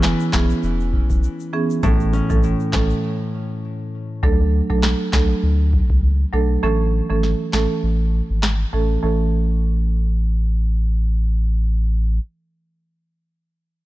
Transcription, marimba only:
0.33 0.49 E3 medium
0.33 0.49 B3 medium
0.33 0.49 C#4 medium
0.33 0.49 G#4 medium
1.53 1.81 E3 medium
1.53 1.81 B3 medium
1.53 1.81 C#4 medium
1.53 1.81 G#4 medium
1.83 2.26 E3 medium
1.83 2.26 A3 medium
1.83 2.26 C#4 medium
1.83 2.26 A4 loud
2.30 2.42 E3 medium
2.30 2.43 A3 medium
2.30 2.43 C#4 medium
2.30 2.43 A4 medium
2.73 2.89 E3 medium
2.73 2.89 A3 medium
2.73 2.89 C#4 medium
2.73 2.89 A4 medium
4.23 4.66 F#3 medium
4.23 4.66 A3 medium
4.23 4.66 D4 medium
4.23 4.66 A4 loud
4.70 4.82 F#3 medium
4.70 4.83 A3 medium
4.70 4.83 D4 medium
4.70 4.83 A4 medium
5.13 5.29 F#3 medium
5.13 5.29 A3 medium
5.13 5.29 D4 medium
5.13 5.29 A4 medium
6.33 6.61 F#3 medium
6.33 6.61 A3 medium
6.33 6.61 D4 medium
6.33 6.61 A4 medium
6.63 7.06 E3 loud
6.63 7.06 A3 medium
6.63 7.06 C#4 medium
6.63 7.06 A4 loud
7.10 7.22 E3 medium
7.10 7.23 A3 medium
7.10 7.23 C#4 medium
7.10 7.23 A4 medium
7.53 7.69 E3 medium
7.53 7.69 A3 medium
7.53 7.69 C#4 medium
7.53 7.69 A4 medium
8.73 9.01 E3 medium
8.73 9.01 A3 medium
8.73 9.01 C#4 medium
8.73 9.01 A4 medium
9.03 12.19 E3 medium
9.03 12.19 A3 medium
9.03 12.20 C#4 medium
9.03 12.20 A4 medium

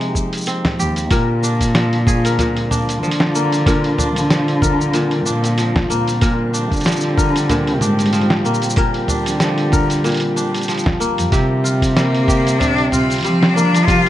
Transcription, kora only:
0.00 1.16 G#3 medium
0.00 0.47 C4 medium
0.00 1.18 D#4 medium
0.00 0.78 G4 medium
0.47 2.27 C4 medium
0.79 2.13 G4 medium
1.11 2.38 A#2 medium
1.11 2.25 A#4 medium
1.43 2.70 D4 medium
1.75 3.02 F3 medium
2.07 3.43 G#4 medium
2.25 3.66 A#4 medium
2.39 3.65 A#2 medium
2.71 3.98 D4 medium
3.03 4.30 F3 medium
3.35 5.89 A#3 medium
3.66 4.93 A#2 medium
3.66 4.61 A#4 medium
3.98 5.25 D4 medium
4.30 5.57 F3 medium
4.62 6.21 A#4 medium
4.94 6.20 A#2 medium
5.26 6.53 D4 medium
5.58 6.85 F3 medium
5.90 8.44 A#3 medium
6.22 7.48 A#2 medium
6.22 7.17 A#4 medium
6.54 7.81 D4 medium
6.85 8.12 F3 medium
7.17 8.76 A#4 medium
7.50 8.76 A#2 medium
7.81 9.09 D4 medium
8.13 9.40 F3 medium
8.45 10.99 A#3 medium
8.77 10.03 A#2 medium
8.77 9.72 A#4 medium
9.09 10.36 D4 medium
9.41 10.68 F3 medium
9.73 11.32 A#4 medium
10.04 11.37 A#2 medium
10.36 12.04 D4 medium
10.68 12.02 F3 medium
11.00 12.93 A#3 medium
11.32 12.59 C3 medium
11.32 12.28 G4 medium
11.64 12.92 F4 medium
11.96 13.24 G3 medium
12.28 13.87 G4 medium
12.60 13.87 C3 medium
12.93 14.09 F4 medium
13.24 14.09 G3 medium
13.56 14.09 A#3 medium
13.88 14.09 C3 medium
13.88 14.09 G4 medium

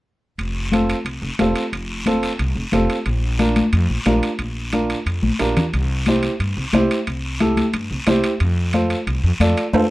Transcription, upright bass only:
0.38 0.92 F1 medium
1.05 1.18 C2 medium
1.22 1.29 F1 medium
1.39 1.53 F1 medium
1.73 2.26 F1 medium
2.39 2.53 C2 medium
2.55 2.62 F1 loud
2.73 2.86 F1 medium
3.06 3.60 A#1 loud
3.73 3.86 F2 medium
3.89 3.96 A#1 medium
4.06 4.19 A#1 medium
4.39 4.93 A#1 medium
5.06 5.20 F2 medium
5.22 5.29 A#1 medium
5.40 5.53 A#1 medium
5.73 6.27 C2 loud
6.40 6.53 G2 medium
6.57 6.63 C2 loud
6.73 6.86 C2 medium
7.08 7.61 C2 medium
7.74 7.87 G2 medium
7.91 7.97 C2 medium
8.07 8.20 C2 medium
8.40 8.94 F2 medium
9.07 9.20 C2 medium
9.24 9.30 F2 medium
9.40 9.53 F2 medium
9.73 9.86 F2 medium

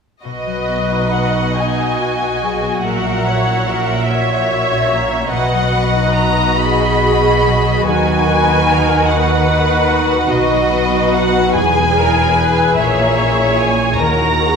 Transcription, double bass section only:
0.25 2.80 B1 soft
2.84 5.29 A#1 soft
5.33 7.83 B1 soft
7.87 10.28 D#2 soft
10.32 11.53 B1 soft
11.56 12.78 E1 soft
12.79 13.98 A#1 soft
14.00 14.56 D#2 soft

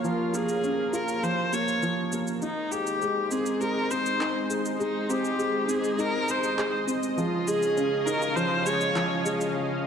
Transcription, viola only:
0.05 0.36 F4 medium
0.35 0.96 G#4 medium
0.94 1.25 A#4 medium
1.23 1.55 C5 loud
1.53 2.13 C#5 loud
2.42 2.74 D#4 medium
2.72 3.33 G4 loud
3.31 3.62 G#4 medium
3.60 3.92 A#4 loud
3.91 4.51 C5 loud
4.80 5.11 D#4 medium
5.10 5.72 G4 medium
5.70 6.02 G#4 loud
6.00 6.32 A#4 loud
6.31 6.89 C5 loud
7.19 7.49 F4 medium
7.48 8.07 G#4 loud
8.06 8.37 A#4 loud
8.36 8.68 C5 loud
8.66 9.26 C#5 loud

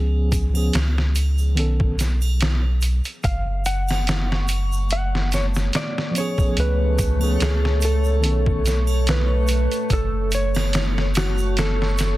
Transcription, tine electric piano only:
0.00 0.47 F3 medium
0.00 0.49 B3 medium
0.00 0.50 C#4 medium
0.00 0.51 G#4 medium
0.53 0.74 F3 medium
0.53 0.75 B3 medium
0.53 0.76 C#4 medium
0.57 0.77 G#4 medium
1.55 1.92 D#3 medium
1.55 1.93 B3 medium
1.55 1.94 C#4 medium
1.59 1.95 A4 medium
6.11 7.14 F3 medium
6.11 7.15 B3 medium
6.17 7.17 C#4 medium
6.17 7.18 G#4 loud
7.19 7.41 F3 medium
7.19 7.42 B3 medium
7.19 7.42 C#4 medium
7.23 7.43 G#4 medium
8.21 8.59 D#3 medium
8.21 8.59 B3 medium
8.21 8.60 C#4 medium
8.25 8.61 A4 medium

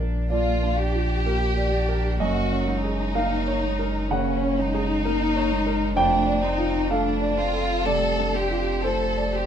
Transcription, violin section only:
0.31 0.75 F4 soft
0.79 2.21 G4 medium
2.21 2.67 F#4 medium
2.67 4.11 D#4 soft
4.09 4.57 C#4 soft
4.57 5.97 D#4 medium
5.96 6.42 D4 medium
6.43 6.90 D#4 medium
6.90 7.37 D4 medium
7.36 7.85 F4 medium
7.87 8.35 A4 medium
8.34 8.84 G4 medium
8.82 9.33 A4 medium
9.34 9.46 G4 soft

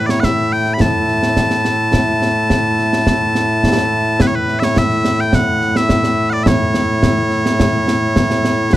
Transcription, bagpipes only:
0.00 8.77 A2 medium
0.00 8.77 A3 medium
0.00 8.77 E4 medium
0.06 0.20 C#5 medium
0.06 0.10 D5 medium
0.20 0.24 F#5 medium
0.24 0.52 E5 medium
0.52 0.74 G5 medium
0.74 0.81 B5 medium
0.81 4.22 A5 loud
4.22 4.27 B4 loud
4.27 4.35 C#5 medium
4.35 4.60 B4 loud
4.60 4.64 E5 loud
4.64 4.78 C#5 loud
4.78 5.20 E5 loud
5.20 5.35 G5 loud
5.35 5.77 F#5 loud
5.77 6.30 E5 medium
6.30 6.43 D5 medium
6.30 6.33 F#5 medium
6.43 6.48 E5 medium
6.48 8.74 C#5 medium
8.74 8.77 B4 medium

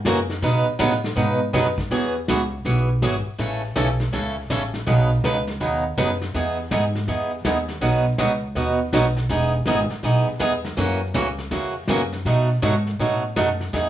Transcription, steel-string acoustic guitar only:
0.06 0.18 C#3 medium
0.06 0.18 E3 medium
0.06 0.18 A#3 medium
0.06 0.18 C#4 medium
0.06 0.18 F#4 medium
0.42 0.65 B2 medium
0.42 0.65 C#3 medium
0.42 0.65 F#3 medium
0.42 0.65 B3 medium
0.42 0.65 D#4 medium
0.42 0.66 B4 medium
0.79 0.91 B2 medium
0.79 0.91 C#3 medium
0.79 0.92 F#3 medium
0.79 0.92 B3 medium
0.79 0.92 D#4 medium
0.79 0.92 B4 loud
1.16 1.39 B2 medium
1.16 1.39 C#3 medium
1.16 1.39 F#3 medium
1.16 1.39 B3 medium
1.16 1.39 D#4 medium
1.16 1.39 B4 medium
1.53 1.66 B2 medium
1.53 1.66 C#3 medium
1.53 1.66 F#3 medium
1.53 1.66 B3 medium
1.53 1.66 D#4 medium
1.53 1.66 B4 medium
1.91 2.13 E3 medium
1.91 2.13 F#3 medium
1.91 2.14 B3 medium
1.91 2.13 F#4 medium
1.91 2.14 G#4 medium
2.29 2.40 E3 medium
2.29 2.40 F#3 medium
2.29 2.41 B3 medium
2.29 2.40 F#4 medium
2.29 2.41 G#4 loud
2.65 2.87 E3 medium
2.65 2.88 F#3 medium
2.65 2.88 B3 medium
2.65 2.88 F#4 medium
2.65 2.88 G#4 medium
3.03 3.14 E3 medium
3.03 3.14 F#3 medium
3.03 3.14 B3 medium
3.03 3.14 F#4 medium
3.03 3.14 G#4 medium
3.38 3.61 C#3 medium
3.38 3.61 E3 medium
3.38 3.61 A3 medium
3.38 3.61 C#4 medium
3.38 3.61 A4 medium
3.76 3.88 C#3 medium
3.76 3.88 E3 medium
3.76 3.88 A3 medium
3.76 3.88 C#4 medium
3.76 3.88 A4 medium
4.13 4.35 C#3 medium
4.13 4.35 E3 medium
4.13 4.35 A3 medium
4.13 4.35 C#4 medium
4.13 4.35 A4 medium
4.50 4.62 C#3 medium
4.50 4.62 E3 medium
4.50 4.62 A3 medium
4.50 4.62 C#4 medium
4.50 4.62 A4 medium
4.87 5.09 B2 medium
4.87 5.09 C#3 medium
4.87 5.09 F#3 medium
4.87 5.09 B3 medium
4.87 5.09 D#4 medium
4.87 5.09 B4 medium
5.24 5.36 B2 medium
5.24 5.36 C#3 medium
5.24 5.36 F#3 medium
5.24 5.36 B3 medium
5.24 5.36 D#4 medium
5.24 5.36 B4 loud
5.60 5.83 B2 medium
5.60 5.83 C#3 medium
5.60 5.83 F#3 medium
5.60 5.83 B3 medium
5.60 5.83 D#4 medium
5.60 5.83 B4 medium
5.98 6.09 B2 medium
5.98 6.09 C#3 medium
5.98 6.09 F#3 medium
5.98 6.10 B3 medium
5.98 6.10 D#4 medium
5.98 6.10 B4 medium
6.34 6.57 E3 medium
6.34 6.57 B3 medium
6.34 6.57 D#4 medium
6.34 6.57 G#4 medium
6.71 6.83 E3 medium
6.71 6.83 B3 medium
6.71 6.83 D#4 medium
6.71 6.83 G#4 medium
7.08 7.30 E3 medium
7.08 7.30 B3 medium
7.08 7.30 D#4 medium
7.08 7.31 G#4 medium
7.45 7.57 E3 medium
7.45 7.57 B3 medium
7.45 7.57 D#4 medium
7.45 7.57 G#4 medium
7.81 8.04 B2 medium
7.81 8.04 F#3 medium
7.81 8.04 B3 medium
7.81 8.04 D#4 medium
7.81 8.04 F#4 medium
8.19 8.31 B2 medium
8.19 8.31 F#3 medium
8.19 8.31 B3 medium
8.19 8.31 D#4 medium
8.19 8.31 F#4 medium
8.56 8.78 B2 medium
8.56 8.78 F#3 medium
8.56 8.78 B3 medium
8.56 8.78 D#4 medium
8.56 8.78 F#4 medium
8.93 9.05 B2 medium
8.93 9.05 F#3 medium
8.93 9.05 B3 medium
8.93 9.05 D#4 loud
8.93 9.05 F#4 medium
9.30 9.52 E3 medium
9.30 9.52 B3 medium
9.30 9.52 D#4 medium
9.30 9.52 G#4 medium
9.67 9.79 E3 medium
9.67 9.79 B3 medium
9.67 9.79 D#4 medium
9.67 9.79 G#4 loud
10.04 10.26 E3 medium
10.04 10.26 B3 medium
10.04 10.26 D#4 medium
10.04 10.26 G#4 medium
10.39 10.52 E3 medium
10.39 10.52 B3 medium
10.39 10.52 D#4 medium
10.39 10.52 G#4 medium
10.77 10.99 C#3 medium
10.77 10.99 E3 medium
10.77 10.99 A#3 medium
10.77 11.00 C#4 medium
10.77 11.00 F#4 medium
11.14 11.26 C#3 medium
11.14 11.26 E3 medium
11.14 11.26 A#3 medium
11.14 11.26 C#4 medium
11.14 11.27 F#4 medium
11.51 11.74 C#3 medium
11.51 11.73 E3 medium
11.51 11.74 A#3 medium
11.51 11.74 C#4 medium
11.51 11.74 F#4 medium
11.89 12.00 C#3 medium
11.89 12.00 E3 medium
11.89 12.01 A#3 medium
11.89 12.00 C#4 medium
11.89 12.01 F#4 loud
12.26 12.48 B2 medium
12.26 12.48 F#3 medium
12.26 12.48 A3 medium
12.26 12.48 D#4 medium
12.26 12.48 F#4 medium
12.62 12.74 B2 medium
12.62 12.74 F#3 medium
12.62 12.74 A3 medium
12.62 12.74 D#4 medium
12.62 12.74 F#4 medium
12.99 13.21 B2 medium
12.99 13.22 F#3 medium
12.99 13.22 A3 medium
12.99 13.22 D#4 medium
12.99 13.22 F#4 medium
13.36 13.48 B2 medium
13.36 13.48 F#3 medium
13.36 13.48 A3 medium
13.36 13.48 D#4 medium
13.36 13.48 F#4 medium
13.73 13.89 E3 medium
13.73 13.89 B3 medium
13.73 13.89 D#4 medium
13.73 13.89 G#4 medium

